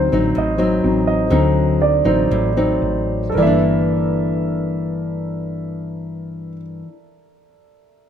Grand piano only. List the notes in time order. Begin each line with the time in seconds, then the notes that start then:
Already playing: F#3 C4 D#4 C5
0.38 D#5
0.83 F#3 C4 D#4
1.07 D#5
1.31 F#3 C4 D#4
1.82 D5
2.07 C5
3.30 A4
3.34 A#4 D5
3.42 E5